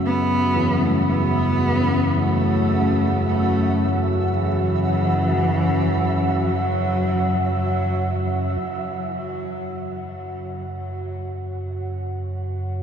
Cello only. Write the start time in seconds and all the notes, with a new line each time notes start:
0.06 B3
0.85 A3
1.10 B3
2.19 A3
3.26 A3
4.32 E3
6.47 F#3
7.53 F#3